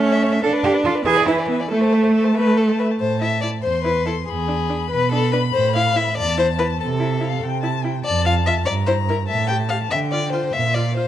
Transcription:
0.00 0.42 A3 loud
0.00 0.35 C#4 medium
0.00 0.14 C#5 medium
0.00 0.13 E5 medium
0.12 0.24 C#5 medium
0.12 0.24 E5 medium
0.22 0.34 C#5 medium
0.22 0.34 E5 medium
0.32 0.42 C#5 soft
0.32 0.43 E5 medium
0.42 0.98 D4 medium
0.42 0.51 A4 loud
0.42 0.55 A4 medium
0.42 0.53 F5 medium
0.52 0.65 B4 medium
0.52 0.65 D5 medium
0.63 0.72 G4 loud
0.63 0.76 A4 medium
0.63 0.76 F5 medium
0.74 0.85 B4 medium
0.74 0.85 D5 medium
0.84 0.92 F4 loud
0.84 0.97 A4 medium
0.84 0.96 F5 medium
0.95 1.05 B4 medium
0.95 1.05 D5 medium
1.05 1.62 E3 medium
1.05 1.26 G#4 loud
1.05 1.19 B4 medium
1.05 1.17 E5 medium
1.15 1.29 D5 medium
1.15 1.29 G#5 medium
1.27 1.35 E4 medium
1.27 1.41 B4 medium
1.27 1.40 E5 medium
1.39 1.48 D5 medium
1.39 1.48 G#5 medium
1.47 1.55 B3 medium
1.47 1.62 B4 soft
1.47 1.61 E5 medium
1.59 1.70 D5 medium
1.59 1.70 G#5 soft
1.69 2.76 A3 medium
1.69 2.28 A3 medium
1.69 1.83 A4 medium
1.69 1.85 E5 medium
1.81 1.95 C5 medium
1.81 1.94 A5 medium
1.93 2.04 A4 soft
1.93 2.05 E5 medium
2.03 2.13 C5 medium
2.03 2.13 A5 medium
2.14 2.26 A4 medium
2.14 2.26 E5 medium
2.24 2.35 C5 medium
2.24 2.37 A5 medium
2.35 2.93 A3 medium
2.35 2.59 B4 medium
2.35 2.48 E5 medium
2.47 2.57 A5 medium
2.58 2.79 A4 medium
2.58 2.70 E5 medium
2.69 2.81 A5 soft
2.79 2.87 B4 medium
2.79 2.92 E5 medium
2.91 3.00 A5 soft
3.00 3.53 A2 medium
3.00 3.21 C5 medium
3.00 3.60 A5 medium
3.21 3.28 E4 soft
3.21 3.41 E5 medium
3.42 3.50 E4 soft
3.42 3.50 D5 medium
3.63 4.17 E2 medium
3.63 3.84 C5 medium
3.63 4.30 C6 medium
3.84 3.92 E4 soft
3.84 4.06 B4 medium
4.06 4.13 E4 soft
4.06 4.15 A4 medium
4.28 4.81 E2 medium
4.28 4.90 G#4 medium
4.28 6.17 B5 medium
4.48 4.55 D4 medium
4.70 4.77 D4 soft
4.90 5.44 B2 medium
4.90 5.11 B4 medium
5.12 5.19 D4 soft
5.12 5.32 A4 medium
5.33 5.40 D4 medium
5.33 5.41 B4 medium
5.53 6.07 A2 medium
5.53 5.75 C5 medium
5.75 5.82 E4 medium
5.75 5.98 F5 medium
5.95 6.02 E4 medium
5.95 6.17 E5 medium
6.17 6.70 E2 medium
6.17 6.38 D5 loud
6.17 6.79 A5 medium
6.37 6.44 E4 medium
6.37 6.47 C5 medium
6.58 6.65 E4 medium
6.58 6.67 B4 medium
6.80 7.33 C3 medium
6.80 7.42 A4 medium
6.80 6.88 A5 medium
7.00 7.06 E4 medium
7.00 7.24 E5 medium
7.20 7.27 E4 medium
7.20 7.44 F5 medium
7.43 7.95 C3 medium
7.43 7.62 G5 medium
7.63 7.70 E4 medium
7.63 7.85 A5 medium
7.84 7.91 E4 medium
7.84 8.04 G5 medium
8.05 8.57 F2 medium
8.05 8.24 D5 medium
8.05 8.68 A5 medium
8.26 8.32 F4 medium
8.26 8.34 F5 medium
8.46 8.53 F4 medium
8.46 8.54 E5 medium
8.66 9.19 G2 medium
8.66 8.74 D5 medium
8.66 9.29 A#5 medium
8.87 8.94 E4 medium
8.87 8.95 C5 medium
9.09 9.16 E4 medium
9.09 9.17 A#4 medium
9.29 9.81 A2 medium
9.29 9.47 E5 medium
9.29 9.92 A5 medium
9.48 9.57 G4 soft
9.48 9.56 G5 medium
9.69 9.77 G4 soft
9.69 9.77 F5 medium
9.91 10.43 D3 medium
9.91 9.99 E5 medium
9.91 10.54 G5 medium
10.12 10.19 F4 soft
10.12 10.32 D5 medium
10.32 10.39 F4 soft
10.32 10.54 C5 medium
10.52 11.08 A#2 medium
10.52 10.76 E5 medium
10.52 11.08 F5 medium
10.74 10.81 F4 soft
10.74 10.96 D5 medium
10.96 11.03 F4 soft
10.96 11.08 C5 medium

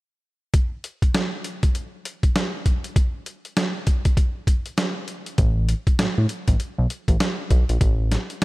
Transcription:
0.54 kick loud
0.54 closed hi-hat medium
0.84 closed hi-hat medium
1.02 kick medium
1.02 closed hi-hat soft
1.14 snare loud
1.14 closed hi-hat medium
1.44 closed hi-hat medium
1.63 kick medium
1.63 closed hi-hat medium
1.75 closed hi-hat medium
2.05 closed hi-hat medium
2.23 kick medium
2.23 closed hi-hat soft
2.36 snare loud
2.36 closed hi-hat medium
2.66 kick medium
2.66 closed hi-hat medium
2.84 closed hi-hat medium
2.96 kick loud
2.96 closed hi-hat medium
3.26 closed hi-hat medium
3.45 closed hi-hat soft
3.57 snare loud
3.57 closed hi-hat medium
3.87 kick medium
3.87 closed hi-hat medium
4.05 kick medium
4.05 closed hi-hat medium
4.17 kick loud
4.17 closed hi-hat medium
4.47 kick medium
4.47 closed hi-hat medium
4.66 closed hi-hat soft
4.78 snare loud
4.78 closed hi-hat medium
5.08 closed hi-hat medium
5.26 closed hi-hat medium
5.38 5.74 A1 loud
5.38 kick loud
5.38 closed hi-hat medium
5.69 closed hi-hat medium
5.87 kick medium
5.87 closed hi-hat soft
5.99 6.07 A2 soft
5.99 snare loud
5.99 closed hi-hat medium
6.18 6.27 A2 medium
6.29 closed hi-hat medium
6.48 6.57 A1 medium
6.48 kick medium
6.48 closed hi-hat medium
6.60 closed hi-hat medium
6.78 6.87 B1 loud
6.90 closed hi-hat medium
7.08 7.17 A1 medium
7.08 kick medium
7.08 closed hi-hat soft
7.20 snare loud
7.20 closed hi-hat medium
7.50 7.64 B1 medium
7.50 kick medium
7.50 closed hi-hat medium
7.69 7.78 A#1 medium
7.69 closed hi-hat medium
7.81 8.17 A1 loud
7.81 kick loud
7.81 closed hi-hat medium
8.12 snare medium
8.12 closed hi-hat medium
8.30 closed hi-hat soft

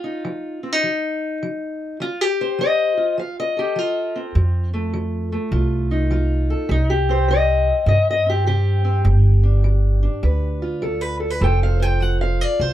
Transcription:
0.00 0.19 F3 medium
0.00 0.63 D#4 soft
0.00 0.77 F4 medium
0.25 0.79 F3 medium
0.63 0.72 C4 soft
0.72 2.00 D#4 soft
0.83 1.37 F3 medium
1.43 1.96 F3 medium
2.00 2.54 F3 medium
2.00 2.21 F4 medium
2.21 2.97 G4 medium
2.41 3.18 C5 medium
2.59 3.13 F3 medium
2.59 3.18 D#5 loud
2.97 3.57 F4 soft
3.17 3.72 F3 medium
3.17 3.38 F5 medium
3.40 4.16 D#5 loud
3.57 3.78 G4 medium
3.57 4.33 A4 soft
3.76 4.30 F3 medium
3.76 5.51 F4 medium
4.16 4.73 C4 soft
4.35 5.36 F2 medium
4.35 4.89 F3 medium
4.74 5.31 A3 soft
4.93 5.48 F3 medium
5.32 6.67 A3 soft
5.52 6.53 C2 medium
5.52 6.06 F3 medium
5.52 6.10 F4 soft
5.91 6.67 D#4 soft
6.11 6.65 F3 medium
6.11 6.67 F4 soft
6.50 6.70 A4 soft
6.69 7.70 C2 medium
6.69 7.24 C3 medium
6.69 6.90 D#4 medium
6.90 7.68 G4 medium
7.09 8.25 C4 soft
7.09 7.29 C5 medium
7.28 7.83 C3 medium
7.28 7.87 D#5 medium
7.86 9.06 G2 medium
7.86 8.42 C3 medium
7.86 8.07 D#5 medium
8.11 8.28 D#5 medium
8.26 8.83 C4 soft
8.26 8.46 G4 medium
8.46 9.01 C3 medium
8.46 10.62 G4 medium
8.84 9.05 C4 soft
9.05 10.06 G1 medium
9.05 9.60 G3 medium
9.43 10.01 D4 soft
9.64 10.19 G3 medium
10.03 11.39 D4 soft
10.23 11.43 D2 medium
10.23 10.78 G3 medium
10.23 10.82 B4 soft
10.62 11.39 F4 soft
10.82 11.37 G3 medium
10.82 11.01 A4 soft
11.01 11.20 B4 soft
11.20 11.30 A4 soft
11.30 11.41 B4 soft
11.40 12.43 F1 medium
11.40 11.96 F3 medium
11.40 12.73 F4 soft
11.40 12.73 A4 soft
11.40 11.79 C5 soft
11.40 11.62 G5 medium
11.63 11.82 F5 medium
11.80 12.41 C5 soft
11.80 12.02 G5 medium
12.00 12.55 F3 medium
12.00 12.21 F#5 medium
12.21 12.73 F5 medium
12.41 12.61 D5 loud
12.60 12.73 C2 medium
12.60 12.73 F3 medium
12.60 12.73 C5 medium

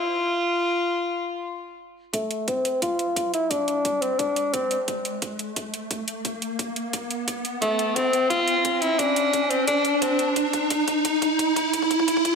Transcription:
0.00 1.79 F4 loud
2.14 2.46 A3 medium
2.14 kick medium
2.14 closed hi-hat medium
2.14 riser medium
2.31 closed hi-hat medium
2.48 2.80 C4 loud
2.48 kick medium
2.48 closed hi-hat medium
2.65 closed hi-hat medium
2.82 3.30 F4 loud
2.82 kick medium
2.82 closed hi-hat medium
2.99 closed hi-hat medium
3.16 kick medium
3.16 closed hi-hat medium
3.34 3.52 E4 loud
3.34 closed hi-hat medium
3.51 4.03 D4 loud
3.51 kick medium
3.51 closed hi-hat medium
3.68 closed hi-hat medium
3.85 kick medium
3.85 closed hi-hat medium
4.02 4.21 C4 medium
4.02 closed hi-hat medium
4.19 4.55 D4 loud
4.19 kick medium
4.19 closed hi-hat medium
4.36 closed hi-hat medium
4.53 4.80 C4 medium
4.53 kick medium
4.53 closed hi-hat medium
4.71 closed hi-hat medium
4.88 kick medium
4.88 closed hi-hat medium
5.05 closed hi-hat medium
5.22 kick medium
5.22 closed hi-hat medium
5.39 closed hi-hat medium
5.56 kick medium
5.56 closed hi-hat medium
5.74 closed hi-hat medium
5.91 kick medium
5.91 closed hi-hat medium
6.08 closed hi-hat medium
6.25 kick medium
6.25 closed hi-hat medium
6.42 closed hi-hat medium
6.59 kick medium
6.59 closed hi-hat medium
6.76 closed hi-hat medium
6.93 kick medium
6.93 closed hi-hat medium
7.11 closed hi-hat medium
7.28 kick medium
7.28 closed hi-hat medium
7.45 closed hi-hat medium
7.62 7.98 A3 loud
7.62 kick loud
7.62 closed hi-hat medium
7.79 closed hi-hat medium
7.96 8.29 C4 loud
7.96 kick loud
7.96 closed hi-hat medium
8.13 closed hi-hat medium
8.30 8.83 F4 loud
8.30 kick loud
8.30 closed hi-hat medium
8.48 closed hi-hat medium
8.65 kick loud
8.65 closed hi-hat medium
8.81 9.00 E4 loud
8.81 closed hi-hat medium
8.98 9.51 D4 loud
8.98 kick loud
8.98 closed hi-hat medium
9.16 closed hi-hat medium
9.33 kick loud
9.33 closed hi-hat medium
9.50 9.67 C4 medium
9.50 closed hi-hat medium
9.67 10.03 D4 loud
9.67 kick loud
9.67 closed hi-hat medium
9.85 closed hi-hat medium
10.02 10.28 C4 medium
10.02 kick loud
10.02 closed hi-hat medium
10.19 closed hi-hat medium
10.36 kick loud
10.36 closed hi-hat medium
10.53 kick loud
10.53 closed hi-hat medium
10.70 kick loud
10.70 closed hi-hat medium
10.88 kick loud
10.88 closed hi-hat medium
11.05 kick loud
11.05 closed hi-hat medium
11.22 kick loud
11.22 closed hi-hat medium
11.39 kick loud
11.39 closed hi-hat loud
11.56 kick loud
11.56 closed hi-hat medium
11.73 kick loud
11.73 closed hi-hat loud
11.82 kick medium
11.91 kick loud
11.91 closed hi-hat medium
12.00 kick medium
12.08 kick loud
12.08 closed hi-hat loud
12.17 kick medium
12.25 kick loud
12.25 closed hi-hat medium

